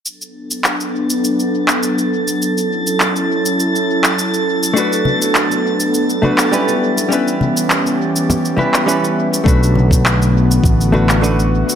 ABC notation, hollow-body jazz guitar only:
X:1
M:4/4
L:1/8
Q:1/4=102
K:Bm
V:1 name="Hollow-body jazz guitar"
z8 | z8 | [A,DFB]4- [A,DFB] [A,DFB] [G,CEB]2 | [G,CEB]4- [G,CEB] [G,CEB] [G,CEB]2 |
[A,DFB]4- [A,DFB] [A,DFB] [A,DFB]2 |]